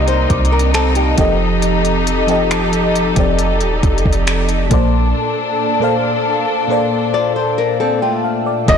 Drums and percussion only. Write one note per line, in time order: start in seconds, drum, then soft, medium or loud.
0.08 closed hi-hat soft
0.30 kick medium
0.30 closed hi-hat medium
0.45 closed hi-hat medium
0.59 closed hi-hat medium
0.74 finger snap loud
0.74 closed hi-hat medium
0.95 closed hi-hat medium
1.18 kick loud
1.18 closed hi-hat medium
1.62 closed hi-hat medium
1.85 closed hi-hat medium
2.07 closed hi-hat medium
2.28 closed hi-hat soft
2.51 finger snap loud
2.51 closed hi-hat medium
2.73 closed hi-hat medium
2.96 closed hi-hat medium
3.16 kick medium
3.16 closed hi-hat medium
3.39 closed hi-hat medium
3.61 closed hi-hat soft
3.83 kick loud
3.83 closed hi-hat medium
3.98 closed hi-hat medium
4.06 kick medium
4.13 closed hi-hat medium
4.27 finger snap loud
4.27 closed hi-hat medium
4.49 closed hi-hat soft
4.71 kick loud
4.71 closed hi-hat medium
8.68 kick loud
8.68 closed hi-hat medium